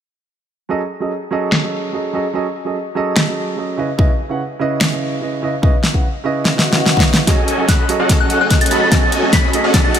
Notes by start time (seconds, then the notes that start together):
0.69 F#3 C#4 G#4 A4 D#5
1.00 F#3 C#4 G#4 A4 D#5
1.31 F#3 C#4 G#4 A4 D#5
1.52 finger snap, snare
1.62 F#3 C#4 G#4 A4 D#5
1.93 F#3 C#4 G#4 A4 D#5
2.13 F#3 C#4 G#4 A4 D#5
2.33 F#3 C#4 G#4 A4 D#5
2.65 F#3 C#4 G#4 A4 D#5
2.95 F#3 C#4 G#4 A4 D#5
3.16 finger snap, snare
3.26 F#3 C#4 G#4 A4 D#5
3.57 F#3 C#4 G#4 A4 D#5
3.77 C#3 C#4 E4 B4 D#5
3.98 C#3 C#4 E4 B4 D#5, kick
4.29 C#3 C#4 E4 B4 F#5
4.59 C#3 C#4 E4 B4 D#5
4.81 finger snap, snare
4.90 C#3 C#4 E4 B4 D#5
5.21 C#3 C#4 E4 B4 D#5
5.42 C#3 C#4 E4 B4 D#5
5.62 C#3 C#4 E4 B4 D#5, kick
5.83 snare
5.93 C#3 C#4 E4 B4 F#5, kick
6.24 C#3 C#4 E4 B4 D#5
6.45 snare, swell
6.55 C#3 C#4 E4 B4 D#5, snare
6.73 C#3 C#4 E4, snare
6.77 B4 D#5
6.86 snare
6.96 C#3 C#4 E4 B4 D#5, kick, snare
7.14 snare
7.26 F#3 A3 C#4 F#4 G#4 A4 D#5 G#5, kick, snare, closed hi-hat, riser
7.48 closed hi-hat
7.58 F#3 C#4 G#4 A4 D#5
7.68 C#4 F#4 A4 B5 F#6, kick, snare, closed hi-hat
7.88 F#3 C#4 G#4 A4 D#5, closed hi-hat
7.99 C#4 F#4 A4 D#5 F#5
8.09 kick, snare, closed hi-hat
8.20 F#3 C#4 G#4 A4 D#5 F#6
8.30 closed hi-hat
8.41 C#4 F#4 A4 D#5 G#5 F#6
8.50 F#3 C#4 G#4 A4 D#5 F#6, kick, snare, closed hi-hat
8.61 A6, closed hi-hat
8.66 closed hi-hat
8.71 F#3 C#4 F#4 G#4 A4 D#5 B5 A6, closed hi-hat
8.91 F#3 C#4 F#4 G#4 A4 D#5 G#5 A6, kick, snare, closed hi-hat
9.12 closed hi-hat
9.22 F#3 C#4 G#4 A4 D#5
9.33 C#4 F#4 A4 B5 B6, kick, snare, closed hi-hat
9.53 F#3 C#4 G#4 A4 D#5, closed hi-hat
9.64 C#4 F#4 A4 D#5 F#5
9.74 A6, kick, snare, closed hi-hat
9.84 F#3 C#4 G#4 A4 D#5 A6
9.95 closed hi-hat